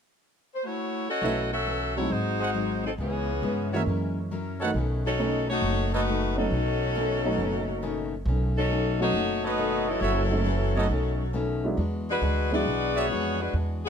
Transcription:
0.55 saxophone section C5
0.65 saxophone section A3 E4 F#4 C#5
1.09 saxophone section C#4 F#4 A4 D#5
1.21 upright bass B1, steel-string acoustic guitar B2 E3 A3 C#4, grand piano F#3 A3 C#4 E4, trumpet section A4 B4 C#5 E5
1.53 saxophone section C#4 F#4 A4 E5
1.66 steel-string acoustic guitar B2 E3 A3 C#4
1.96 grand piano F#3 G#3 C4 D#4, saxophone section A3 E4 F#4 C#5
2.10 upright bass G#1, steel-string acoustic guitar G#2 F#3 C4 D#4, saxophone section G#3 D#4 F#4 C5
2.39 trumpet section G#4 C5 D#5 F#5
2.54 steel-string acoustic guitar G#2 F#3 C4 D#4
2.86 saxophone section F#3 C4 D#4 A4
2.98 upright bass C#2, steel-string acoustic guitar C#3 G#3 B3 E4, saxophone section E3 B3 C#4 G#4
3.42 upright bass G2, steel-string acoustic guitar C#3 G#3 B3 E4
3.72 grand piano E3 G#3 A#3 C#4, trumpet section F#4 A#4 C#5 E5
3.86 upright bass F#2, steel-string acoustic guitar F#3 C#4 E4 A#4
4.31 steel-string acoustic guitar F#3 C#4 E4 A#4
4.60 grand piano D#3 F#3 A3 D#4, trumpet section A4 B4 C#5 F#5
4.74 upright bass B1, steel-string acoustic guitar B2 D#3 A3 C#4
5.06 saxophone section F#3 C#4 D#4 A4
5.18 steel-string acoustic guitar B2 D#3 A3 C#4, grand piano F#3 A3 B3 C#4 D#4
5.50 saxophone section A3 D#4 F#4 C#5
5.62 upright bass F#1, steel-string acoustic guitar B2 D#3 A3 C#4
5.92 saxophone section A3 D#4 F#4 B4, trumpet section A4 B4 C#5 D#5
6.07 steel-string acoustic guitar B2 D#3 A3 C#4
6.36 grand piano F#3 A3 B3 C#4 D#4, saxophone section F#3 C#4 D#4 A4
6.51 upright bass B1, steel-string acoustic guitar B2 D#3 A3 C#4
6.95 steel-string acoustic guitar B2 D#3 A3 C#4
7.24 grand piano F#3 A3 B3 C#4 D#4
7.38 upright bass F#1, steel-string acoustic guitar B2 D#3 A3 C#4
7.82 steel-string acoustic guitar B2 D#3 A3 C#4
8.26 upright bass B1, steel-string acoustic guitar B2 D#3 A3 C#4
8.57 saxophone section F#3 C#4 D#4 A4
8.71 steel-string acoustic guitar B2 D#3 A3 C#4
9.00 grand piano F#3 A3 B3 C#4 D#4, saxophone section A3 D#4 F#4 C#5
9.13 upright bass F#1, steel-string acoustic guitar B2 D#3 A3 C#4
9.43 saxophone section A3 D#4 F#4 B4, trumpet section A4 B4 C#5 D#5
9.58 steel-string acoustic guitar B2 D#3 A3 C#4
9.88 saxophone section F#3 C#4 E4 A4
10.01 upright bass F#1, steel-string acoustic guitar F#2 E3 A3 C#4, trumpet section F#4 A4 C#5 E5
10.31 grand piano F#3 G#3 A3 C#4 E4
10.45 steel-string acoustic guitar F#2 E3 A3 C#4
10.75 grand piano F#3 A3 B3 C#4 D#4, trumpet section A4 B4 C#5 D#5
10.89 upright bass B1, steel-string acoustic guitar B2 D#3 A3 C#4
11.33 steel-string acoustic guitar B2 D#3 A3 C#4
11.64 grand piano F#3 G#3 B3 D4 E4
11.77 upright bass E2, steel-string acoustic guitar E3 G#3 D4 F#4
12.10 saxophone section G#3 D4 F#4 B4
12.21 upright bass D2, steel-string acoustic guitar E3 G#3 D4 F#4
12.51 grand piano F#3 G#3 B3 D4 E4, saxophone section B3 F#4 G#4 D5
12.66 upright bass B1, steel-string acoustic guitar E3 G#3 D4 F#4
12.95 saxophone section B3 F#4 G#4 C#5, trumpet section F#4 G#4 D5 E5
13.10 upright bass F2, steel-string acoustic guitar E3 G#3 D4 F#4
13.41 saxophone section G#3 D4 F#4 B4
13.53 upright bass E2, steel-string acoustic guitar E3 G#3 D4 F#4
13.85 saxophone section B3 F#4 G#4 D5

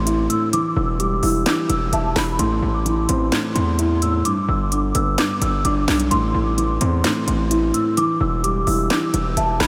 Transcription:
Already playing: 808-style bass A1, grand piano A2 E3 C4, celesta C6
0.07 grand piano E4, closed hi-hat
0.30 grand piano A2, celesta E6, closed hi-hat
0.53 grand piano E3, celesta D6, closed hi-hat
0.76 808-style bass E1, grand piano E3, celesta E6
1.00 grand piano G3, celesta D6, closed hi-hat
1.23 808-style bass E1, grand piano E4, celesta E6, open hi-hat
1.46 grand piano E3, celesta D6, snare, clap, closed hi-hat
1.69 808-style bass E1, grand piano E3, celesta E6, closed hi-hat
1.93 808-style bass E1, grand piano E5, celesta A5, closed hi-hat
2.16 808-style bass E1, grand piano E3, celesta B5, cross-stick, snare, clap, open hi-hat
2.39 808-style bass A1, grand piano A2, celesta C6, closed hi-hat
2.62 808-style bass A1, grand piano A2
2.74 celesta D6
2.86 grand piano E3, closed hi-hat
3.09 808-style bass A1, grand piano C4, celesta C6, closed hi-hat
3.32 grand piano A2, snare, clap, closed hi-hat
3.55 808-style bass E2, grand piano A2, celesta C6, closed hi-hat
3.79 grand piano E4, closed hi-hat
4.02 grand piano A2, celesta E6, closed hi-hat
4.25 grand piano G2, celesta D6, closed hi-hat
4.48 808-style bass G1, grand piano G2, celesta E6
4.71 grand piano D3, celesta D6, closed hi-hat
4.95 808-style bass G1, grand piano B3, celesta E6, closed hi-hat
5.18 grand piano G2, celesta D6, snare, clap, closed hi-hat
5.41 808-style bass G1, grand piano G2, celesta E6, closed hi-hat
5.65 808-style bass G1, grand piano D4, celesta D6, closed hi-hat
5.88 808-style bass B1, grand piano G2, snare, clap, closed hi-hat, open hi-hat
6.00 closed hi-hat
6.11 808-style bass A1, grand piano A2, celesta C6, closed hi-hat
6.34 808-style bass A1, grand piano A2
6.46 celesta D6
6.58 grand piano E3, closed hi-hat
6.81 808-style bass E2, grand piano C4, celesta C6, closed hi-hat
7.04 grand piano A2, snare, clap, closed hi-hat
7.27 808-style bass A1, grand piano A2, celesta C6, closed hi-hat
7.51 grand piano E4, closed hi-hat
7.74 grand piano A2, celesta E6, closed hi-hat
7.97 grand piano E3, celesta D6, closed hi-hat
8.20 808-style bass E1, grand piano E3, celesta E6
8.44 grand piano G3, celesta D6, closed hi-hat
8.67 808-style bass E1, grand piano E4, celesta E6, open hi-hat
8.90 grand piano E3, celesta D6, snare, clap, closed hi-hat
9.14 808-style bass E1, grand piano E3, celesta E6, closed hi-hat
9.37 808-style bass E1, grand piano E5, celesta A5, closed hi-hat
9.60 808-style bass E1, grand piano E3, celesta B5, cross-stick, snare, clap, open hi-hat

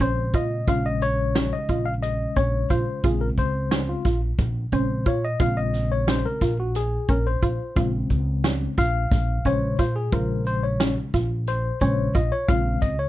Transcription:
Already playing: tine electric piano C#3 G#3 C4
0.00 upright bass A#1, synth arpeggio sound C#4, tine electric piano C5, kick, closed hi-hat
0.34 upright bass A#2, synth arpeggio sound F4, tine electric piano D#5, kick, closed hi-hat
0.67 upright bass A#1, tine electric piano C#3 G#3 C#4 F5, synth arpeggio sound F4, kick, closed hi-hat
0.86 tine electric piano D#5
1.01 tine electric piano C#5, closed hi-hat
1.35 synth arpeggio sound C#4, snare, closed hi-hat
1.53 tine electric piano D#5
1.69 upright bass A#1, synth arpeggio sound F4, kick, closed hi-hat
1.85 tine electric piano F5
2.03 tine electric piano D#5, closed hi-hat
2.36 upright bass A#1, synth arpeggio sound C#4, tine electric piano C#5, kick, closed hi-hat
2.70 upright bass A#1, synth arpeggio sound F4, tine electric piano C5, kick, closed hi-hat
3.04 upright bass A#1, tine electric piano C#3 G#3 C4 G#4, synth arpeggio sound F4, kick, closed hi-hat
3.21 tine electric piano A#4
3.38 upright bass C#2, tine electric piano C5, kick, closed hi-hat
3.71 synth arpeggio sound C#4, snare, closed hi-hat
3.89 tine electric piano F4
4.05 upright bass A#1, synth arpeggio sound F4, kick, snare, closed hi-hat
4.38 upright bass A#1, kick, closed hi-hat
4.72 upright bass A#1, tine electric piano C#3 G#3 C4 C5, synth arpeggio sound C#4, kick, closed hi-hat
5.06 upright bass A#2, synth arpeggio sound F4, tine electric piano C#5, kick, closed hi-hat
5.25 tine electric piano D#5
5.40 upright bass A#1, tine electric piano C#3 G#3 C4 F5, synth arpeggio sound F4, kick, closed hi-hat
5.57 tine electric piano D#5
5.74 snare, closed hi-hat
5.92 tine electric piano C#5
6.08 synth arpeggio sound C#4, tine electric piano C5, snare, closed hi-hat
6.26 tine electric piano A#4
6.41 upright bass A#1, synth arpeggio sound F4, kick, snare, closed hi-hat
6.60 tine electric piano F#4
6.75 tine electric piano G#4, closed hi-hat
7.09 upright bass A#1, synth arpeggio sound C#4, tine electric piano A#4, kick, closed hi-hat
7.27 tine electric piano C5
7.42 upright bass A#1, synth arpeggio sound F4, kick, closed hi-hat
7.76 upright bass A#1, tine electric piano C#3 G#3 C4, synth arpeggio sound F4, kick, closed hi-hat
8.10 upright bass C#2, kick, closed hi-hat
8.44 synth arpeggio sound C#4, snare, closed hi-hat
8.78 upright bass A#1, synth arpeggio sound F4, tine electric piano F5, kick, snare, closed hi-hat
9.11 upright bass A#1, kick, snare, closed hi-hat
9.45 upright bass A#1, tine electric piano C#3 G#3 C5 C#5, synth arpeggio sound C#4, kick, closed hi-hat
9.79 upright bass A#2, synth arpeggio sound F4, tine electric piano C5, kick, snare, closed hi-hat
9.96 tine electric piano G#4
10.12 upright bass A#1, tine electric piano C#3 G#3 A#4 C5, synth arpeggio sound F4, kick, closed hi-hat
10.46 tine electric piano C5, closed hi-hat
10.63 tine electric piano C#5
10.80 synth arpeggio sound C#4, snare, closed hi-hat
11.14 upright bass A#1, synth arpeggio sound F4, kick, snare, closed hi-hat
11.47 tine electric piano C5, closed hi-hat
11.81 upright bass A#1, tine electric piano C#3 G#3 C5 C#5, synth arpeggio sound C#4, kick, closed hi-hat
12.15 upright bass A#1, synth arpeggio sound F4, tine electric piano D#5, kick, closed hi-hat
12.32 tine electric piano C#5
12.48 upright bass A#1, tine electric piano C#3 G#3 C4 F5, synth arpeggio sound F4, kick, closed hi-hat
12.82 upright bass C#2, tine electric piano D#5, kick, closed hi-hat
12.99 tine electric piano C#5

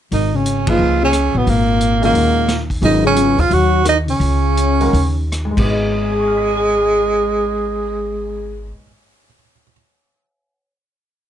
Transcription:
0.12 upright bass G#1, tenor saxophone D#3 D#4, open hi-hat
0.34 tenor saxophone C#3 C#4
0.46 closed hi-hat
0.66 grand piano A#2 F3 D#4 G#4 B4, tenor saxophone F3 F4, kick, ride
0.79 upright bass C#2
1.02 tenor saxophone C#3 C#4
1.13 cross-stick, closed hi-hat
1.35 upright bass A1, tenor saxophone B2 B3
1.47 upright bass G#1, tenor saxophone A#2 A#3, open hi-hat
1.81 closed hi-hat
2.02 tenor saxophone A#2 A#3, grand piano D#3 G#3 C#4 F#4 A#4, open hi-hat
2.14 upright bass D#2, open hi-hat
2.48 cross-stick, snare, closed hi-hat
2.70 kick, open hi-hat
2.82 upright bass G#1, grand piano C#3 F#3 B3 F4 G#4, tenor saxophone D#3 D#4, open hi-hat
3.04 tenor saxophone C#3 C#4
3.16 grand piano C#3 F#3 B3 F4 G#4, closed hi-hat
3.38 upright bass D#2, tenor saxophone F3 F4, open hi-hat
3.50 upright bass D#2, tenor saxophone F#3 F#4, open hi-hat
3.85 tenor saxophone D#3 D#4, cross-stick, closed hi-hat
4.08 tenor saxophone C#3 C#4, open hi-hat
4.20 upright bass C#2, open hi-hat
4.57 closed hi-hat
4.80 grand piano D#3 G#3 C#4 F#4 A#4, open hi-hat
4.93 upright bass D#2, open hi-hat
5.32 cross-stick, closed hi-hat
5.45 grand piano G#2
5.51 grand piano G#3
5.56 upright bass G#1, tenor saxophone G#3 G#4, grand piano B3, kick, crash
5.64 grand piano D#4
5.70 grand piano D#5
6.12 grand piano G#5
6.20 grand piano C#6
6.28 grand piano F6
6.37 grand piano B6
6.47 grand piano D#7
6.57 grand piano G#7

